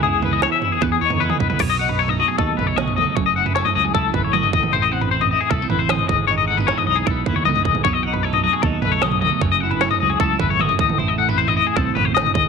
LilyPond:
<<
  \new Staff \with { instrumentName = "Clean electric guitar" } { \time 4/4 \key a \lydian \tempo 4 = 154 gis'8 b'16 dis''16 cis''16 e''8 gis'16 b'16 gis'16 cis''8 b'16 gis'16 b'16 b'16 | cis''16 dis''16 fis''16 b'16 cis''16 dis''16 dis''16 gis'16 a'8 b'16 cis''16 dis''8 dis''8 | cis''16 dis''16 fis''16 b'16 cis''16 dis''16 dis''16 gis'16 a'8 b'16 cis''16 dis''8 dis''8 | c''16 dis''16 fis''16 b'16 c''16 dis''16 dis''16 gis'16 a'8 b'16 c''16 dis''8 dis''8 |
cis''16 dis''16 fis''16 b'16 cis''16 dis''16 dis''16 gis'16 a'8 b'16 cis''16 dis''8 dis''8 | cis''16 dis''16 fis''16 b'16 cis''16 dis''16 dis''16 gis'16 a'8 b'16 cis''16 dis''8 dis''8 | cis''16 dis''16 fis''16 b'16 cis''16 dis''16 dis''16 gis'16 a'8 b'16 cis''16 dis''8 dis''8 | c''16 dis''16 fis''16 b'16 c''16 dis''16 dis''16 gis'16 a'8 b'16 c''16 dis''8 dis''8 | }
  \new Staff \with { instrumentName = "Clean electric guitar" } { \time 4/4 \key a \lydian << { <e b e' gis'>8 b4 e'8 b8 dis'8 b4 | r8 dis'8 a4 dis'8 a4 a8~ | a8 e'8 a4 e'8 a4. | e'8 c'4 e'8 a16 c'8. c'8 r8 |
dis'8 a16 b8. dis'8 b4 b8 r8 | r8 dis'8 a4 dis'8 a4 a8~ | a8 e'8 a4 e'8 a4. | e'8 a16 c'8. e'8 c'4. r8 | } \\ { cis8 e4. e,4 e4 | b,4. fis4. fis4 | fis,4. fis4. fis8 a,8~ | a,4 e4. e4 gis,8~ |
gis,4 e4. e4 gis,8 | b,4. fis4. fis4 | fis,4. fis4. fis8 a,8~ | a,4 e4. b,8 a,8 gis,8 | } >> }
  \new Staff \with { instrumentName = "Fingered electric bass" } { \clef bass \time 4/4 \key a \lydian cis,4. r8 e,8 e,4 c,8 | b,,2 dis,8 b,,4. | fis,,4. cis,8 cis,8 gis,,4 a,,8 | a,,2 c,8 a,,4 gis,,8~ |
gis,,4. b,,8 b,,8 dis,8 cis,8 b,,8 | b,,2 dis,8 b,,4. | fis,,4. cis,8 cis,8 gis,,4 a,,8 | a,,2 c,8 a,,4 gis,,8 | }
  \new DrumStaff \with { instrumentName = "Drums" } \drummode { \time 4/4 tomfh8 <tomfh toml>8 sn8 tomfh8 <bd tomfh>8. <tomfh toml>16 r16 toml16 <bd tomfh>16 toml16 | <cymc bd tomfh>8. tomfh16 r16 tomfh8. bd8 <tomfh toml>8 <sn toml>16 tomfh16 toml8 | <bd tomfh>8. tomfh16 sn16 tomfh8. bd8 <bd tomfh toml>8 toml16 tomfh16 <bd toml>16 toml16 | tomfh8. tomfh16 r16 tomfh8. bd8 <tomfh toml>8 <sn toml>16 tomfh16 <bd toml>8 |
tomfh8. tomfh16 sn16 tomfh8. bd8 <bd tomfh toml>8 toml16 tomfh16 <bd toml>16 toml16 | <bd tomfh>8. tomfh16 r16 tomfh8. bd8 <tomfh toml>8 <sn toml>16 tomfh16 toml8 | <bd tomfh>8. tomfh16 sn16 tomfh8. bd8 <bd tomfh toml>8 toml16 tomfh16 <bd toml>16 toml16 | tomfh8. tomfh16 r16 tomfh8. bd8 <tomfh toml>8 <sn toml>16 tomfh16 <bd toml>8 | }
>>